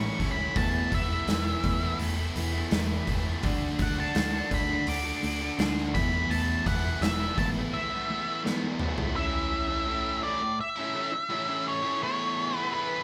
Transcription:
Already playing: overdriven electric guitar A2 E3 A3 C#4 E4, lead electric guitar C#6
0.18 picked electric bass D2, clean electric guitar A2, overdriven electric guitar E3 A3 C#4 E4, kick, open hi-hat
0.32 lead electric guitar B5
0.36 overdriven electric guitar A3 C#4 E4
0.53 picked electric bass E1, overdriven electric guitar E3 A3 B3 E4, lead electric guitar A5, kick, open hi-hat
0.90 picked electric bass E1, overdriven electric guitar E3 A3 B3 E4, kick, open hi-hat
0.94 lead electric guitar E5
1.09 overdriven electric guitar A3 B3 E4
1.27 picked electric bass E1, overdriven electric guitar E3 A3 B3 E4, snare, open hi-hat
1.45 overdriven electric guitar A3 B3 E4
1.64 picked electric bass E1, clean electric guitar E3 A3 B3, kick, open hi-hat
1.81 overdriven electric guitar A3 B3 E4
2.00 picked electric bass E1, clean electric guitar E3 A3, open hi-hat
2.17 overdriven electric guitar A3 B3 E4
2.35 picked electric bass E1, overdriven electric guitar E3 A3 B3 E4, open hi-hat
2.53 overdriven electric guitar A3 B3 E4
2.70 picked electric bass E1, overdriven electric guitar E3 A3 B3 E4, snare, open hi-hat
3.06 picked electric bass E1, overdriven electric guitar E3 A3 B3 E4, kick, open hi-hat
3.24 overdriven electric guitar A3 B3 E4
3.41 picked electric bass D2, overdriven electric guitar D3 A3 D4 F#4, kick, open hi-hat
3.78 picked electric bass D2, overdriven electric guitar D3 A3 D4 F#4, kick, open hi-hat
3.82 lead electric guitar F#5
3.96 overdriven electric guitar A3 D4 F#4, lead electric guitar A5
4.14 picked electric bass D2, overdriven electric guitar D3 A3 D4 F#4, snare, open hi-hat
4.32 overdriven electric guitar A3 D4 F#4
4.51 picked electric bass D2, clean electric guitar D3 A3 D4, lead electric guitar B5, kick, open hi-hat
4.68 overdriven electric guitar A3 D4 F#4
4.87 picked electric bass D2, clean electric guitar D3 A3, lead electric guitar D6, open hi-hat
5.04 overdriven electric guitar A3 D4 F#4
5.22 picked electric bass D2, overdriven electric guitar D3 A3 D4 F#4, open hi-hat
5.40 overdriven electric guitar A3 D4 F#4
5.57 picked electric bass D2, overdriven electric guitar D3 A3 D4 F#4, snare, open hi-hat
5.78 snare
5.94 picked electric bass E1, overdriven electric guitar E3 A3 B3 E4, lead electric guitar B5, kick, open hi-hat
6.12 overdriven electric guitar A3 B3 E4
6.29 picked electric bass E1, overdriven electric guitar E3 A3 B3 E4, lead electric guitar A5, open hi-hat
6.65 picked electric bass E1, overdriven electric guitar E3 A3 B3 E4, lead electric guitar F#5, kick, open hi-hat
6.84 overdriven electric guitar A3 B3 E4
7.01 picked electric bass E1, overdriven electric guitar E3 A3 B3 E4, lead electric guitar E5, snare, open hi-hat
7.20 overdriven electric guitar A3 B3 E4
7.38 picked electric bass G#1, clean electric guitar E3 A3 B3, lead electric guitar A5, kick, open hi-hat
7.54 overdriven electric guitar A3 B3 E4
7.74 clean electric guitar E3 A3, lead electric guitar E5
7.89 overdriven electric guitar A3 B3 E4
8.08 overdriven electric guitar E3 A3 B3 E4
8.25 overdriven electric guitar A3 B3 E4
8.43 overdriven electric guitar E3 A3 B3 E4, snare
8.79 overdriven electric guitar E3 A3 B3 E4, mid tom
8.98 overdriven electric guitar A3 B3 E4, floor tom
9.16 overdriven electric guitar A2 E3 A3 C#4 E4, lead electric guitar E5
9.68 overdriven electric guitar A3 C#4 E4
9.86 overdriven electric guitar A2 E3 A3 C#4 E4
10.22 overdriven electric guitar E3 A3 C#4 E4, lead electric guitar D5
10.41 muted overdriven electric guitar stroke
10.61 lead electric guitar E5
10.76 overdriven electric guitar A3 C#4 E4
10.94 overdriven electric guitar E3 A3 C#4 E4
11.12 muted overdriven electric guitar stroke
11.29 overdriven electric guitar A2 E3 A3 C#4 E4
11.47 overdriven electric guitar A3 C#4 E4
11.68 lead electric guitar C#5
11.83 overdriven electric guitar A3 C#4 E4
12.02 overdriven electric guitar E3 A3 B3 E4, lead electric guitar C#5
12.53 overdriven electric guitar A3 B3 E4
12.58 lead electric guitar B4
12.72 overdriven electric guitar E3 A3 B3 E4, lead electric guitar B4

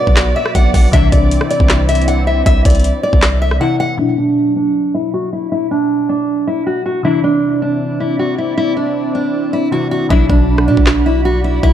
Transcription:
Already playing: synth keys B2 F#3 D4, analog synth pad B3 F#4 D5, steel-string acoustic guitar D5
0.07 808-style bass B1, kick
0.16 snare, clap, closed hi-hat
0.36 steel-string acoustic guitar E5
0.46 cross-stick
0.55 808-style bass B1, steel-string acoustic guitar F#5, kick, closed hi-hat
0.74 808-style bass B1, steel-string acoustic guitar F#5, kick, open hi-hat
0.92 808-style bass C2, synth keys C3 E3 D4, analog synth pad C4 E4, steel-string acoustic guitar E5, kick, closed hi-hat
1.12 808-style bass C2, steel-string acoustic guitar D5, kick, closed hi-hat
1.31 closed hi-hat
1.41 cross-stick
1.51 steel-string acoustic guitar D5, closed hi-hat
1.60 808-style bass C2, kick
1.69 snare, clap, closed hi-hat
1.89 steel-string acoustic guitar E5, closed hi-hat
1.95 closed hi-hat
2.02 closed hi-hat
2.08 steel-string acoustic guitar F#5, closed hi-hat
2.27 steel-string acoustic guitar E5
2.46 808-style bass C2, steel-string acoustic guitar E5, kick, closed hi-hat
2.65 808-style bass C2, steel-string acoustic guitar D5, kick, closed hi-hat
2.70 closed hi-hat
2.75 closed hi-hat
2.80 closed hi-hat
2.84 closed hi-hat
3.03 steel-string acoustic guitar D5
3.13 808-style bass C2, kick
3.22 snare, clap, closed hi-hat
3.42 steel-string acoustic guitar E5
3.51 cross-stick
3.60 synth keys C3 E3 E4, steel-string acoustic guitar F#5
3.80 steel-string acoustic guitar F#5
3.97 synth keys B2 F#3 D4, steel-string acoustic guitar E4
4.18 steel-string acoustic guitar D4
4.56 steel-string acoustic guitar D4
4.95 steel-string acoustic guitar E4
5.14 steel-string acoustic guitar F#4
5.33 steel-string acoustic guitar E4
5.52 steel-string acoustic guitar E4
5.71 steel-string acoustic guitar D4
6.09 steel-string acoustic guitar D4
6.47 steel-string acoustic guitar E4
6.67 steel-string acoustic guitar F#4
6.86 steel-string acoustic guitar F#4
7.03 synth keys C3 E3 D4, analog synth pad C4 E4 D5, steel-string acoustic guitar E4
7.24 steel-string acoustic guitar D4
7.62 steel-string acoustic guitar D4
8.00 steel-string acoustic guitar E4
8.19 steel-string acoustic guitar F#4
8.38 steel-string acoustic guitar E4
8.57 steel-string acoustic guitar E4
8.77 steel-string acoustic guitar D4
9.15 steel-string acoustic guitar D4
9.53 steel-string acoustic guitar E4
9.71 synth keys C3 E3 E4, steel-string acoustic guitar F#4
9.91 steel-string acoustic guitar F#4
10.09 808-style bass B1, synth keys B2 F#3 D4, steel-string acoustic guitar E4, analog synth pad F#4 D5 B5, kick
10.30 808-style bass B1, steel-string acoustic guitar D4, kick
10.58 cross-stick
10.68 808-style bass B2, steel-string acoustic guitar D4
10.77 808-style bass B1, kick
10.86 snare, clap
11.06 steel-string acoustic guitar E4
11.25 steel-string acoustic guitar F#4
11.44 steel-string acoustic guitar E4
11.63 808-style bass B1, steel-string acoustic guitar E4, kick

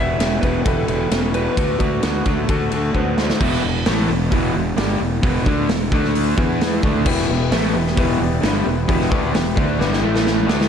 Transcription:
Already playing: fingered electric bass E1, overdriven electric guitar E2 B2, grand piano E4 G4, electric slide guitar E5
0.00 grand piano B4
0.18 fingered electric bass E1, overdriven electric guitar E2 C#3, grand piano E4 G4 B4, snare, ride
0.41 fingered electric bass E1, overdriven electric guitar E2 B2, grand piano E4 G4 B4, electric slide guitar B4, kick, ride
0.65 fingered electric bass E1, overdriven electric guitar E2 B2, grand piano E4 G4 B4, electric slide guitar A4, kick, ride
0.87 fingered electric bass E1, overdriven electric guitar E2 B2, grand piano E4 G4 B4, ride
1.11 fingered electric bass E1, overdriven electric guitar E2 C#3, grand piano E4 G4 B4, snare, ride
1.33 overdriven electric guitar E2 B2, grand piano E4 G4 B4, electric slide guitar B4, ride
1.56 fingered electric bass D2, overdriven electric guitar D3 A3, grand piano D4 F#4 A4, kick, ride
1.78 fingered electric bass D2, overdriven electric guitar D3 A3, grand piano D4 F#4 A4, electric slide guitar F#4, kick, ride
2.03 fingered electric bass D2, overdriven electric guitar D3 B3, grand piano D4 F#4 B4, snare, ride
2.25 fingered electric bass D2, overdriven electric guitar D3 A3, grand piano D4 F#4 A4, kick, ride
2.48 fingered electric bass D2, overdriven electric guitar D3 A3, grand piano D4 F#4 A4, kick, ride
2.71 fingered electric bass D2, overdriven electric guitar D3 A3, grand piano D4 F#4 A4, ride
2.94 fingered electric bass D2, overdriven electric guitar D3 B3, grand piano D4 F#4 C5, kick
3.17 overdriven electric guitar D3 A3, grand piano D4 F#4 C5, snare
3.30 snare
3.39 fingered electric bass E1, overdriven electric guitar E2 B2 E3, kick, crash
3.53 snare
3.63 fingered electric bass E1, overdriven electric guitar E2 B2
3.85 fingered electric bass A1, overdriven electric guitar A2 E3 A3, snare, open hi-hat
4.09 fingered electric bass E1, overdriven electric guitar E2 B2
4.30 fingered electric bass E1, overdriven electric guitar E2 B2 E3, kick, open hi-hat
4.54 fingered electric bass E1, overdriven electric guitar E2 B2
4.76 fingered electric bass G1, overdriven electric guitar G2 D3 G3, snare, open hi-hat
5.00 fingered electric bass E1, overdriven electric guitar E2 B2
5.22 fingered electric bass E1, overdriven electric guitar E2 B2 E3, kick, open hi-hat
5.45 fingered electric bass D2, overdriven electric guitar D3 A3 D4, kick
5.69 fingered electric bass E1, overdriven electric guitar E2 B2, snare, open hi-hat
5.92 fingered electric bass D2, overdriven electric guitar D3 A3 D4, kick
6.05 snare
6.15 open hi-hat
6.37 fingered electric bass E2, overdriven electric guitar E3 B3 E4, kick
6.61 snare, open hi-hat
6.83 fingered electric bass D2, overdriven electric guitar D3 A3 D4, kick
7.05 fingered electric bass E1, overdriven electric guitar E2 B2 E3, grand piano B3 E4 G4 B4, kick, crash
7.17 snare
7.28 fingered electric bass E1, overdriven electric guitar E2 B2, grand piano B3 E4 G4 B4
7.52 fingered electric bass A1, overdriven electric guitar A2 E3 A3, grand piano B3 E4 G4 B4, snare, open hi-hat
7.74 fingered electric bass E1, overdriven electric guitar E2 B2, grand piano B3 E4 G4 B4
7.87 snare
7.96 fingered electric bass E1, overdriven electric guitar E2 B2 E3, grand piano B3 E4 G4 B4, kick, open hi-hat
8.20 fingered electric bass E1, overdriven electric guitar E2 B2, grand piano B3 E4 G4 D5
8.41 fingered electric bass G1, overdriven electric guitar G2 D3 G3, grand piano B3 E4 G4 B4, snare, open hi-hat
8.65 fingered electric bass E1, overdriven electric guitar E2 B2, grand piano B3 E4 G4 B4
8.88 fingered electric bass E1, overdriven electric guitar E2 B2 E3, grand piano B3 E4 G4 B4, kick, open hi-hat
9.01 snare
9.10 fingered electric bass D2, overdriven electric guitar D3 A3 D4, grand piano B3 E4 G4 B4, kick
9.33 fingered electric bass E1, overdriven electric guitar E2 B2, grand piano B3 E4 G4 B4, snare, open hi-hat
9.55 fingered electric bass D2, overdriven electric guitar D3 A3 D4, grand piano B3 E4 G4 B4, kick
9.78 fingered electric bass G1, overdriven electric guitar G2 D3 G3, grand piano B3 E4 G4 B4, snare
9.93 snare
10.02 fingered electric bass A1, overdriven electric guitar A2 E3 A3, grand piano A3 E4 A4 E5
10.16 snare
10.27 snare
10.46 fingered electric bass D2, overdriven electric guitar D3 A3 D4, grand piano E4 G4 B4 E5, snare
10.61 snare

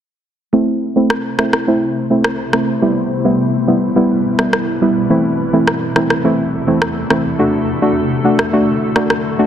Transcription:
0.53 ambient pad C3 A3 E4 C5, synth pluck A3 C4 E4
0.96 synth pluck A3 C4 E4
1.10 cross-stick
1.39 synth pluck A3 C4 E4, cross-stick
1.53 cross-stick
1.67 synth pluck A3 C4 E4
2.10 synth pluck A3 C4 E4
2.24 cross-stick
2.53 synth pluck A3 C4 E4, cross-stick
2.82 ambient pad B2 G3 B4, synth pluck G3 B3 E4
3.24 synth pluck G3 B3 E4
3.67 synth pluck G3 B3 E4
3.96 synth pluck G3 B3 E4
4.39 synth pluck G3 B3 E4, cross-stick
4.53 cross-stick
4.81 synth pluck G3 B3 E4
5.10 ambient pad E2 C3 A3 A4, synth pluck E3 A3 C4 E4
5.53 synth pluck E3 A3 C4 E4
5.68 cross-stick
5.96 synth pluck E3 A3 C4 E4, cross-stick
6.10 cross-stick
6.24 synth pluck E3 A3 C4 E4
6.67 synth pluck E3 A3 C4 E4
6.82 cross-stick
7.10 synth pluck E3 A3 C4 E4, cross-stick
7.39 ambient pad D3 F#4, synth pluck A3 D4 F#4
7.82 synth pluck A3 D4 F#4
8.24 synth pluck A3 D4 F#4
8.39 cross-stick
8.53 synth pluck A3 D4 F#4
8.96 synth pluck A3 D4 F#4, cross-stick
9.10 cross-stick
9.39 synth pluck A3 D4 F#4

